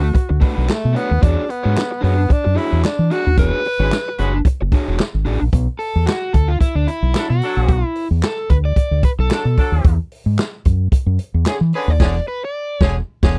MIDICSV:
0, 0, Header, 1, 8, 480
1, 0, Start_track
1, 0, Tempo, 538600
1, 1092, Time_signature, 4, 2, 24, 8
1, 11930, End_track
2, 0, Start_track
2, 0, Title_t, "Overdriven electric guitar"
2, 0, Program_c, 0, 29
2, 359, Note_on_c, 0, 57, 66
2, 369, Note_on_c, 0, 62, 66
2, 371, Note_on_c, 0, 66, 71
2, 374, Note_on_c, 0, 71, 72
2, 479, Note_off_c, 0, 71, 0
2, 489, Note_off_c, 0, 66, 0
2, 490, Note_on_c, 0, 71, 74
2, 493, Note_off_c, 0, 62, 0
2, 496, Note_off_c, 0, 57, 0
2, 499, Note_on_c, 0, 66, 67
2, 504, Note_on_c, 0, 62, 63
2, 507, Note_on_c, 0, 57, 61
2, 591, Note_off_c, 0, 57, 0
2, 595, Note_off_c, 0, 62, 0
2, 595, Note_off_c, 0, 66, 0
2, 603, Note_off_c, 0, 71, 0
2, 831, Note_on_c, 0, 57, 72
2, 839, Note_on_c, 0, 62, 74
2, 844, Note_on_c, 0, 66, 73
2, 851, Note_on_c, 0, 73, 82
2, 980, Note_off_c, 0, 73, 0
2, 985, Note_off_c, 0, 66, 0
2, 986, Note_off_c, 0, 57, 0
2, 988, Note_off_c, 0, 62, 0
2, 1082, Note_on_c, 0, 62, 92
2, 1089, Note_on_c, 0, 66, 99
2, 1097, Note_on_c, 0, 68, 110
2, 1100, Note_on_c, 0, 73, 97
2, 1264, Note_off_c, 0, 62, 0
2, 1268, Note_off_c, 0, 66, 0
2, 1271, Note_off_c, 0, 68, 0
2, 1273, Note_off_c, 0, 73, 0
2, 1455, Note_on_c, 0, 73, 78
2, 1461, Note_on_c, 0, 68, 64
2, 1466, Note_on_c, 0, 66, 64
2, 1470, Note_on_c, 0, 62, 64
2, 1579, Note_off_c, 0, 73, 0
2, 1582, Note_off_c, 0, 68, 0
2, 1585, Note_off_c, 0, 66, 0
2, 1587, Note_off_c, 0, 62, 0
2, 1792, Note_on_c, 0, 62, 82
2, 1796, Note_on_c, 0, 66, 87
2, 1802, Note_on_c, 0, 68, 92
2, 1807, Note_on_c, 0, 73, 98
2, 1917, Note_off_c, 0, 73, 0
2, 1924, Note_off_c, 0, 68, 0
2, 1930, Note_off_c, 0, 66, 0
2, 1978, Note_off_c, 0, 62, 0
2, 2272, Note_on_c, 0, 62, 77
2, 2278, Note_on_c, 0, 66, 75
2, 2281, Note_on_c, 0, 68, 78
2, 2289, Note_on_c, 0, 73, 69
2, 2409, Note_off_c, 0, 73, 0
2, 2413, Note_off_c, 0, 68, 0
2, 2418, Note_off_c, 0, 66, 0
2, 2420, Note_on_c, 0, 73, 68
2, 2422, Note_off_c, 0, 62, 0
2, 2424, Note_on_c, 0, 68, 74
2, 2429, Note_on_c, 0, 66, 66
2, 2433, Note_on_c, 0, 62, 58
2, 2515, Note_off_c, 0, 62, 0
2, 2519, Note_off_c, 0, 66, 0
2, 2522, Note_off_c, 0, 68, 0
2, 2527, Note_off_c, 0, 73, 0
2, 2768, Note_on_c, 0, 62, 77
2, 2776, Note_on_c, 0, 66, 72
2, 2785, Note_on_c, 0, 68, 79
2, 2788, Note_on_c, 0, 74, 83
2, 2904, Note_off_c, 0, 68, 0
2, 2908, Note_off_c, 0, 74, 0
2, 2912, Note_off_c, 0, 66, 0
2, 2914, Note_off_c, 0, 62, 0
2, 3016, Note_on_c, 0, 62, 79
2, 3022, Note_on_c, 0, 66, 94
2, 3029, Note_on_c, 0, 68, 97
2, 3031, Note_on_c, 0, 73, 93
2, 3190, Note_off_c, 0, 62, 0
2, 3193, Note_off_c, 0, 66, 0
2, 3196, Note_off_c, 0, 68, 0
2, 3197, Note_off_c, 0, 73, 0
2, 3385, Note_on_c, 0, 73, 59
2, 3390, Note_on_c, 0, 68, 58
2, 3393, Note_on_c, 0, 66, 56
2, 3401, Note_on_c, 0, 62, 49
2, 3503, Note_off_c, 0, 73, 0
2, 3506, Note_off_c, 0, 68, 0
2, 3507, Note_off_c, 0, 66, 0
2, 3511, Note_off_c, 0, 62, 0
2, 3734, Note_on_c, 0, 62, 86
2, 3739, Note_on_c, 0, 66, 95
2, 3741, Note_on_c, 0, 68, 92
2, 3748, Note_on_c, 0, 73, 100
2, 3857, Note_off_c, 0, 73, 0
2, 3867, Note_off_c, 0, 68, 0
2, 3872, Note_off_c, 0, 66, 0
2, 3908, Note_off_c, 0, 62, 0
2, 4214, Note_on_c, 0, 62, 60
2, 4223, Note_on_c, 0, 66, 65
2, 4223, Note_on_c, 0, 68, 66
2, 4231, Note_on_c, 0, 73, 66
2, 4332, Note_off_c, 0, 73, 0
2, 4340, Note_off_c, 0, 68, 0
2, 4343, Note_on_c, 0, 73, 58
2, 4344, Note_off_c, 0, 66, 0
2, 4350, Note_off_c, 0, 62, 0
2, 4350, Note_on_c, 0, 68, 55
2, 4355, Note_on_c, 0, 66, 63
2, 4360, Note_on_c, 0, 62, 55
2, 4438, Note_off_c, 0, 62, 0
2, 4440, Note_off_c, 0, 66, 0
2, 4446, Note_off_c, 0, 68, 0
2, 4450, Note_off_c, 0, 73, 0
2, 4678, Note_on_c, 0, 62, 62
2, 4686, Note_on_c, 0, 66, 71
2, 4694, Note_on_c, 0, 68, 81
2, 4696, Note_on_c, 0, 74, 71
2, 4811, Note_off_c, 0, 68, 0
2, 4813, Note_off_c, 0, 74, 0
2, 4814, Note_off_c, 0, 66, 0
2, 4829, Note_off_c, 0, 62, 0
2, 5159, Note_on_c, 0, 69, 82
2, 5399, Note_on_c, 0, 66, 80
2, 5411, Note_off_c, 0, 69, 0
2, 5644, Note_on_c, 0, 69, 84
2, 5652, Note_off_c, 0, 66, 0
2, 5776, Note_on_c, 0, 65, 75
2, 5786, Note_off_c, 0, 69, 0
2, 5883, Note_off_c, 0, 65, 0
2, 5887, Note_on_c, 0, 64, 83
2, 6019, Note_off_c, 0, 64, 0
2, 6019, Note_on_c, 0, 62, 83
2, 6126, Note_on_c, 0, 64, 90
2, 6131, Note_off_c, 0, 62, 0
2, 6501, Note_off_c, 0, 64, 0
2, 6505, Note_on_c, 0, 66, 94
2, 7004, Note_off_c, 0, 66, 0
2, 7004, Note_on_c, 0, 64, 94
2, 7190, Note_off_c, 0, 64, 0
2, 7336, Note_on_c, 0, 69, 98
2, 7574, Note_on_c, 0, 71, 105
2, 7582, Note_off_c, 0, 69, 0
2, 7618, Note_off_c, 0, 71, 0
2, 7710, Note_on_c, 0, 74, 90
2, 8031, Note_off_c, 0, 74, 0
2, 8062, Note_on_c, 0, 71, 97
2, 8107, Note_off_c, 0, 71, 0
2, 8198, Note_on_c, 0, 69, 102
2, 8641, Note_off_c, 0, 69, 0
2, 10224, Note_on_c, 0, 68, 87
2, 10288, Note_off_c, 0, 68, 0
2, 10475, Note_on_c, 0, 71, 108
2, 10607, Note_off_c, 0, 71, 0
2, 10607, Note_on_c, 0, 74, 114
2, 10941, Note_off_c, 0, 74, 0
2, 10944, Note_on_c, 0, 71, 93
2, 11080, Note_off_c, 0, 71, 0
2, 11093, Note_on_c, 0, 74, 98
2, 11414, Note_off_c, 0, 74, 0
2, 11414, Note_on_c, 0, 73, 98
2, 11531, Note_off_c, 0, 73, 0
2, 11930, End_track
3, 0, Start_track
3, 0, Title_t, "Horn section"
3, 0, Program_c, 1, 61
3, 3381, Note_on_c, 1, 71, 89
3, 3384, Note_on_c, 1, 56, 83
3, 3384, Note_on_c, 1, 66, 84
3, 3449, Note_off_c, 1, 71, 0
3, 3451, Note_off_c, 1, 56, 0
3, 3451, Note_off_c, 1, 66, 0
3, 3718, Note_on_c, 1, 56, 94
3, 3719, Note_on_c, 1, 66, 90
3, 3720, Note_on_c, 1, 71, 105
3, 3874, Note_off_c, 1, 56, 0
3, 3875, Note_off_c, 1, 66, 0
3, 3875, Note_off_c, 1, 71, 0
3, 6376, Note_on_c, 1, 54, 80
3, 6379, Note_on_c, 1, 62, 82
3, 6382, Note_on_c, 1, 69, 88
3, 6460, Note_off_c, 1, 54, 0
3, 6462, Note_off_c, 1, 62, 0
3, 6464, Note_off_c, 1, 69, 0
3, 6612, Note_on_c, 1, 54, 107
3, 6613, Note_on_c, 1, 69, 104
3, 6623, Note_on_c, 1, 62, 105
3, 6930, Note_off_c, 1, 54, 0
3, 6931, Note_off_c, 1, 69, 0
3, 6936, Note_off_c, 1, 62, 0
3, 8301, Note_on_c, 1, 62, 84
3, 8302, Note_on_c, 1, 69, 83
3, 8306, Note_on_c, 1, 54, 73
3, 8384, Note_off_c, 1, 62, 0
3, 8385, Note_off_c, 1, 69, 0
3, 8388, Note_off_c, 1, 54, 0
3, 8541, Note_on_c, 1, 62, 109
3, 8543, Note_on_c, 1, 54, 99
3, 8544, Note_on_c, 1, 69, 104
3, 8857, Note_off_c, 1, 62, 0
3, 8858, Note_off_c, 1, 54, 0
3, 8859, Note_off_c, 1, 69, 0
3, 10212, Note_on_c, 1, 61, 82
3, 10217, Note_on_c, 1, 50, 80
3, 10217, Note_on_c, 1, 68, 89
3, 10300, Note_off_c, 1, 61, 0
3, 10302, Note_off_c, 1, 50, 0
3, 10303, Note_off_c, 1, 68, 0
3, 10454, Note_on_c, 1, 68, 106
3, 10456, Note_on_c, 1, 50, 101
3, 10457, Note_on_c, 1, 61, 95
3, 10608, Note_off_c, 1, 68, 0
3, 10609, Note_off_c, 1, 50, 0
3, 10610, Note_off_c, 1, 61, 0
3, 10682, Note_on_c, 1, 50, 105
3, 10684, Note_on_c, 1, 61, 106
3, 10689, Note_on_c, 1, 68, 106
3, 10813, Note_off_c, 1, 50, 0
3, 10814, Note_off_c, 1, 61, 0
3, 10818, Note_off_c, 1, 68, 0
3, 11411, Note_on_c, 1, 61, 103
3, 11415, Note_on_c, 1, 50, 105
3, 11418, Note_on_c, 1, 68, 106
3, 11539, Note_off_c, 1, 61, 0
3, 11543, Note_off_c, 1, 50, 0
3, 11544, Note_off_c, 1, 68, 0
3, 11778, Note_on_c, 1, 68, 97
3, 11780, Note_on_c, 1, 61, 101
3, 11788, Note_on_c, 1, 50, 97
3, 11902, Note_off_c, 1, 68, 0
3, 11903, Note_off_c, 1, 61, 0
3, 11909, Note_off_c, 1, 50, 0
3, 11930, End_track
4, 0, Start_track
4, 0, Title_t, "Tenor saxophone"
4, 0, Program_c, 2, 66
4, 0, Note_on_c, 2, 66, 101
4, 343, Note_off_c, 2, 66, 0
4, 617, Note_on_c, 2, 57, 84
4, 857, Note_on_c, 2, 59, 90
4, 871, Note_off_c, 2, 57, 0
4, 1086, Note_on_c, 2, 62, 84
4, 1099, Note_off_c, 2, 59, 0
4, 1336, Note_on_c, 2, 59, 85
4, 1350, Note_off_c, 2, 62, 0
4, 1813, Note_off_c, 2, 59, 0
4, 1818, Note_on_c, 2, 59, 84
4, 2069, Note_on_c, 2, 62, 95
4, 2082, Note_off_c, 2, 59, 0
4, 2295, Note_on_c, 2, 64, 85
4, 2308, Note_off_c, 2, 62, 0
4, 2532, Note_off_c, 2, 64, 0
4, 2537, Note_on_c, 2, 62, 90
4, 2778, Note_on_c, 2, 66, 103
4, 2791, Note_off_c, 2, 62, 0
4, 3013, Note_off_c, 2, 66, 0
4, 3024, Note_on_c, 2, 71, 109
4, 3940, Note_off_c, 2, 71, 0
4, 11930, End_track
5, 0, Start_track
5, 0, Title_t, "Fingered electric bass"
5, 0, Program_c, 3, 33
5, 0, Note_on_c, 3, 38, 89
5, 105, Note_off_c, 3, 38, 0
5, 269, Note_on_c, 3, 38, 86
5, 361, Note_off_c, 3, 38, 0
5, 511, Note_on_c, 3, 35, 97
5, 602, Note_off_c, 3, 35, 0
5, 756, Note_on_c, 3, 47, 95
5, 844, Note_off_c, 3, 47, 0
5, 989, Note_on_c, 3, 39, 102
5, 1080, Note_off_c, 3, 39, 0
5, 1091, Note_on_c, 3, 40, 98
5, 1209, Note_off_c, 3, 40, 0
5, 1473, Note_on_c, 3, 44, 88
5, 1562, Note_off_c, 3, 44, 0
5, 1812, Note_on_c, 3, 42, 85
5, 2021, Note_off_c, 3, 42, 0
5, 2194, Note_on_c, 3, 42, 90
5, 2282, Note_off_c, 3, 42, 0
5, 2428, Note_on_c, 3, 40, 89
5, 2519, Note_off_c, 3, 40, 0
5, 2663, Note_on_c, 3, 52, 82
5, 2755, Note_off_c, 3, 52, 0
5, 2910, Note_on_c, 3, 39, 90
5, 2999, Note_off_c, 3, 39, 0
5, 3008, Note_on_c, 3, 28, 105
5, 3126, Note_off_c, 3, 28, 0
5, 3380, Note_on_c, 3, 32, 102
5, 3474, Note_off_c, 3, 32, 0
5, 3734, Note_on_c, 3, 30, 84
5, 3942, Note_off_c, 3, 30, 0
5, 4112, Note_on_c, 3, 30, 92
5, 4200, Note_off_c, 3, 30, 0
5, 4347, Note_on_c, 3, 28, 79
5, 4438, Note_off_c, 3, 28, 0
5, 4583, Note_on_c, 3, 32, 89
5, 4675, Note_off_c, 3, 32, 0
5, 4693, Note_on_c, 3, 33, 82
5, 4809, Note_off_c, 3, 33, 0
5, 4827, Note_on_c, 3, 34, 79
5, 4918, Note_off_c, 3, 34, 0
5, 4928, Note_on_c, 3, 35, 102
5, 5046, Note_off_c, 3, 35, 0
5, 5307, Note_on_c, 3, 40, 98
5, 5398, Note_off_c, 3, 40, 0
5, 5654, Note_on_c, 3, 38, 80
5, 5863, Note_off_c, 3, 38, 0
5, 6017, Note_on_c, 3, 38, 75
5, 6113, Note_off_c, 3, 38, 0
5, 6259, Note_on_c, 3, 35, 104
5, 6354, Note_off_c, 3, 35, 0
5, 6505, Note_on_c, 3, 47, 85
5, 6598, Note_off_c, 3, 47, 0
5, 6744, Note_on_c, 3, 34, 87
5, 6850, Note_off_c, 3, 34, 0
5, 6850, Note_on_c, 3, 35, 97
5, 6969, Note_off_c, 3, 35, 0
5, 7224, Note_on_c, 3, 40, 96
5, 7318, Note_off_c, 3, 40, 0
5, 7576, Note_on_c, 3, 38, 89
5, 7785, Note_off_c, 3, 38, 0
5, 7942, Note_on_c, 3, 38, 83
5, 8037, Note_off_c, 3, 38, 0
5, 8185, Note_on_c, 3, 35, 98
5, 8279, Note_off_c, 3, 35, 0
5, 8423, Note_on_c, 3, 47, 92
5, 8518, Note_off_c, 3, 47, 0
5, 8661, Note_on_c, 3, 39, 92
5, 8757, Note_off_c, 3, 39, 0
5, 8773, Note_on_c, 3, 40, 103
5, 8892, Note_off_c, 3, 40, 0
5, 9143, Note_on_c, 3, 44, 91
5, 9239, Note_off_c, 3, 44, 0
5, 9498, Note_on_c, 3, 42, 84
5, 9707, Note_off_c, 3, 42, 0
5, 9860, Note_on_c, 3, 42, 96
5, 9957, Note_off_c, 3, 42, 0
5, 10108, Note_on_c, 3, 40, 96
5, 10202, Note_off_c, 3, 40, 0
5, 10345, Note_on_c, 3, 52, 96
5, 10441, Note_off_c, 3, 52, 0
5, 10585, Note_on_c, 3, 39, 99
5, 10689, Note_off_c, 3, 39, 0
5, 10694, Note_on_c, 3, 28, 104
5, 10864, Note_off_c, 3, 28, 0
5, 11413, Note_on_c, 3, 28, 114
5, 11584, Note_off_c, 3, 28, 0
5, 11787, Note_on_c, 3, 28, 108
5, 11930, Note_off_c, 3, 28, 0
5, 11930, End_track
6, 0, Start_track
6, 0, Title_t, "Muted fingered electric bass strokes"
6, 2051, Note_on_c, 9, 29, 46
6, 2141, Note_off_c, 9, 29, 0
6, 9728, Note_on_c, 9, 29, 44
6, 9818, Note_off_c, 9, 29, 0
6, 11930, End_track
7, 0, Start_track
7, 0, Title_t, "Muted overdriven electric guitar strokes"
7, 22, Note_on_c, 9, 29, 46
7, 111, Note_off_c, 9, 29, 0
7, 122, Note_on_c, 9, 29, 45
7, 211, Note_off_c, 9, 29, 0
7, 260, Note_on_c, 9, 29, 40
7, 349, Note_off_c, 9, 29, 0
7, 602, Note_on_c, 9, 29, 44
7, 691, Note_off_c, 9, 29, 0
7, 984, Note_on_c, 9, 29, 51
7, 1073, Note_off_c, 9, 29, 0
7, 1328, Note_on_c, 9, 29, 34
7, 1417, Note_off_c, 9, 29, 0
7, 1701, Note_on_c, 9, 29, 46
7, 1791, Note_off_c, 9, 29, 0
7, 1928, Note_on_c, 9, 29, 42
7, 2017, Note_off_c, 9, 29, 0
7, 2040, Note_on_c, 9, 29, 42
7, 2129, Note_off_c, 9, 29, 0
7, 2177, Note_on_c, 9, 29, 56
7, 2266, Note_off_c, 9, 29, 0
7, 2526, Note_on_c, 9, 29, 42
7, 2615, Note_off_c, 9, 29, 0
7, 2912, Note_on_c, 9, 29, 45
7, 3001, Note_off_c, 9, 29, 0
7, 3263, Note_on_c, 9, 29, 46
7, 3352, Note_off_c, 9, 29, 0
7, 3637, Note_on_c, 9, 29, 58
7, 3726, Note_off_c, 9, 29, 0
7, 3868, Note_on_c, 9, 29, 48
7, 3957, Note_off_c, 9, 29, 0
7, 3977, Note_on_c, 9, 29, 42
7, 4066, Note_off_c, 9, 29, 0
7, 4107, Note_on_c, 9, 29, 48
7, 4196, Note_off_c, 9, 29, 0
7, 4449, Note_on_c, 9, 29, 42
7, 4538, Note_off_c, 9, 29, 0
7, 4816, Note_on_c, 9, 29, 51
7, 4906, Note_off_c, 9, 29, 0
7, 11930, End_track
8, 0, Start_track
8, 0, Title_t, "Drums"
8, 131, Note_on_c, 9, 36, 95
8, 136, Note_on_c, 9, 42, 90
8, 220, Note_off_c, 9, 36, 0
8, 225, Note_off_c, 9, 42, 0
8, 371, Note_on_c, 9, 36, 99
8, 372, Note_on_c, 9, 46, 79
8, 460, Note_off_c, 9, 36, 0
8, 461, Note_off_c, 9, 46, 0
8, 610, Note_on_c, 9, 42, 94
8, 618, Note_on_c, 9, 38, 109
8, 618, Note_on_c, 9, 39, 88
8, 699, Note_off_c, 9, 42, 0
8, 708, Note_off_c, 9, 38, 0
8, 708, Note_off_c, 9, 39, 0
8, 855, Note_on_c, 9, 42, 75
8, 944, Note_off_c, 9, 42, 0
8, 1093, Note_on_c, 9, 42, 87
8, 1094, Note_on_c, 9, 36, 107
8, 1182, Note_off_c, 9, 42, 0
8, 1183, Note_off_c, 9, 36, 0
8, 1337, Note_on_c, 9, 42, 79
8, 1426, Note_off_c, 9, 42, 0
8, 1571, Note_on_c, 9, 42, 84
8, 1583, Note_on_c, 9, 38, 122
8, 1583, Note_on_c, 9, 39, 99
8, 1660, Note_off_c, 9, 42, 0
8, 1672, Note_off_c, 9, 38, 0
8, 1672, Note_off_c, 9, 39, 0
8, 1816, Note_on_c, 9, 46, 75
8, 1905, Note_off_c, 9, 46, 0
8, 2051, Note_on_c, 9, 36, 94
8, 2056, Note_on_c, 9, 42, 91
8, 2140, Note_off_c, 9, 36, 0
8, 2145, Note_off_c, 9, 42, 0
8, 2296, Note_on_c, 9, 46, 81
8, 2386, Note_off_c, 9, 46, 0
8, 2529, Note_on_c, 9, 42, 89
8, 2538, Note_on_c, 9, 38, 106
8, 2538, Note_on_c, 9, 39, 89
8, 2618, Note_off_c, 9, 42, 0
8, 2627, Note_off_c, 9, 38, 0
8, 2627, Note_off_c, 9, 39, 0
8, 2772, Note_on_c, 9, 42, 70
8, 2861, Note_off_c, 9, 42, 0
8, 3008, Note_on_c, 9, 42, 88
8, 3009, Note_on_c, 9, 36, 112
8, 3097, Note_off_c, 9, 42, 0
8, 3098, Note_off_c, 9, 36, 0
8, 3251, Note_on_c, 9, 46, 80
8, 3340, Note_off_c, 9, 46, 0
8, 3486, Note_on_c, 9, 42, 86
8, 3498, Note_on_c, 9, 38, 113
8, 3498, Note_on_c, 9, 39, 102
8, 3575, Note_off_c, 9, 42, 0
8, 3587, Note_off_c, 9, 38, 0
8, 3587, Note_off_c, 9, 39, 0
8, 3728, Note_on_c, 9, 42, 78
8, 3817, Note_off_c, 9, 42, 0
8, 3965, Note_on_c, 9, 36, 94
8, 3968, Note_on_c, 9, 42, 84
8, 4055, Note_off_c, 9, 36, 0
8, 4057, Note_off_c, 9, 42, 0
8, 4205, Note_on_c, 9, 36, 97
8, 4209, Note_on_c, 9, 46, 83
8, 4295, Note_off_c, 9, 36, 0
8, 4298, Note_off_c, 9, 46, 0
8, 4446, Note_on_c, 9, 42, 87
8, 4454, Note_on_c, 9, 38, 113
8, 4454, Note_on_c, 9, 39, 81
8, 4535, Note_off_c, 9, 42, 0
8, 4543, Note_off_c, 9, 38, 0
8, 4543, Note_off_c, 9, 39, 0
8, 4685, Note_on_c, 9, 46, 70
8, 4774, Note_off_c, 9, 46, 0
8, 4927, Note_on_c, 9, 36, 101
8, 4927, Note_on_c, 9, 42, 89
8, 5016, Note_off_c, 9, 36, 0
8, 5016, Note_off_c, 9, 42, 0
8, 5167, Note_on_c, 9, 46, 73
8, 5257, Note_off_c, 9, 46, 0
8, 5410, Note_on_c, 9, 42, 88
8, 5422, Note_on_c, 9, 38, 110
8, 5422, Note_on_c, 9, 39, 92
8, 5499, Note_off_c, 9, 42, 0
8, 5511, Note_off_c, 9, 38, 0
8, 5511, Note_off_c, 9, 39, 0
8, 5650, Note_on_c, 9, 42, 78
8, 5652, Note_on_c, 9, 36, 96
8, 5739, Note_off_c, 9, 42, 0
8, 5741, Note_off_c, 9, 36, 0
8, 5887, Note_on_c, 9, 36, 88
8, 5893, Note_on_c, 9, 42, 101
8, 5976, Note_off_c, 9, 36, 0
8, 5982, Note_off_c, 9, 42, 0
8, 6130, Note_on_c, 9, 42, 81
8, 6219, Note_off_c, 9, 42, 0
8, 6367, Note_on_c, 9, 42, 98
8, 6375, Note_on_c, 9, 38, 122
8, 6375, Note_on_c, 9, 39, 104
8, 6456, Note_off_c, 9, 42, 0
8, 6464, Note_off_c, 9, 38, 0
8, 6464, Note_off_c, 9, 39, 0
8, 6609, Note_on_c, 9, 46, 70
8, 6698, Note_off_c, 9, 46, 0
8, 6849, Note_on_c, 9, 36, 106
8, 6850, Note_on_c, 9, 42, 90
8, 6938, Note_off_c, 9, 36, 0
8, 6939, Note_off_c, 9, 42, 0
8, 7089, Note_on_c, 9, 46, 83
8, 7178, Note_off_c, 9, 46, 0
8, 7325, Note_on_c, 9, 42, 89
8, 7337, Note_on_c, 9, 38, 118
8, 7337, Note_on_c, 9, 39, 97
8, 7415, Note_off_c, 9, 42, 0
8, 7427, Note_off_c, 9, 38, 0
8, 7427, Note_off_c, 9, 39, 0
8, 7571, Note_on_c, 9, 42, 71
8, 7576, Note_on_c, 9, 36, 94
8, 7660, Note_off_c, 9, 42, 0
8, 7665, Note_off_c, 9, 36, 0
8, 7809, Note_on_c, 9, 36, 90
8, 7810, Note_on_c, 9, 42, 95
8, 7898, Note_off_c, 9, 36, 0
8, 7899, Note_off_c, 9, 42, 0
8, 8048, Note_on_c, 9, 36, 100
8, 8048, Note_on_c, 9, 42, 88
8, 8137, Note_off_c, 9, 42, 0
8, 8138, Note_off_c, 9, 36, 0
8, 8289, Note_on_c, 9, 42, 92
8, 8297, Note_on_c, 9, 38, 113
8, 8297, Note_on_c, 9, 39, 98
8, 8378, Note_off_c, 9, 42, 0
8, 8386, Note_off_c, 9, 38, 0
8, 8386, Note_off_c, 9, 39, 0
8, 8534, Note_on_c, 9, 36, 89
8, 8535, Note_on_c, 9, 46, 74
8, 8623, Note_off_c, 9, 36, 0
8, 8624, Note_off_c, 9, 46, 0
8, 8775, Note_on_c, 9, 36, 118
8, 8775, Note_on_c, 9, 42, 97
8, 8864, Note_off_c, 9, 36, 0
8, 8865, Note_off_c, 9, 42, 0
8, 9015, Note_on_c, 9, 46, 78
8, 9105, Note_off_c, 9, 46, 0
8, 9247, Note_on_c, 9, 42, 87
8, 9259, Note_on_c, 9, 38, 115
8, 9259, Note_on_c, 9, 39, 91
8, 9336, Note_off_c, 9, 42, 0
8, 9348, Note_off_c, 9, 38, 0
8, 9348, Note_off_c, 9, 39, 0
8, 9492, Note_on_c, 9, 42, 79
8, 9497, Note_on_c, 9, 36, 84
8, 9581, Note_off_c, 9, 42, 0
8, 9587, Note_off_c, 9, 36, 0
8, 9732, Note_on_c, 9, 36, 100
8, 9737, Note_on_c, 9, 42, 102
8, 9821, Note_off_c, 9, 36, 0
8, 9826, Note_off_c, 9, 42, 0
8, 9970, Note_on_c, 9, 42, 87
8, 10059, Note_off_c, 9, 42, 0
8, 10207, Note_on_c, 9, 42, 92
8, 10215, Note_on_c, 9, 38, 114
8, 10215, Note_on_c, 9, 39, 98
8, 10296, Note_off_c, 9, 42, 0
8, 10304, Note_off_c, 9, 38, 0
8, 10304, Note_off_c, 9, 39, 0
8, 10452, Note_on_c, 9, 46, 74
8, 10541, Note_off_c, 9, 46, 0
8, 10694, Note_on_c, 9, 36, 123
8, 10695, Note_on_c, 9, 49, 87
8, 10701, Note_on_c, 9, 38, 119
8, 10783, Note_off_c, 9, 36, 0
8, 10784, Note_off_c, 9, 49, 0
8, 10790, Note_off_c, 9, 38, 0
8, 11414, Note_on_c, 9, 36, 118
8, 11418, Note_on_c, 9, 38, 113
8, 11503, Note_off_c, 9, 36, 0
8, 11507, Note_off_c, 9, 38, 0
8, 11789, Note_on_c, 9, 36, 111
8, 11790, Note_on_c, 9, 49, 83
8, 11795, Note_on_c, 9, 38, 114
8, 11878, Note_off_c, 9, 36, 0
8, 11879, Note_off_c, 9, 49, 0
8, 11884, Note_off_c, 9, 38, 0
8, 11930, End_track
0, 0, End_of_file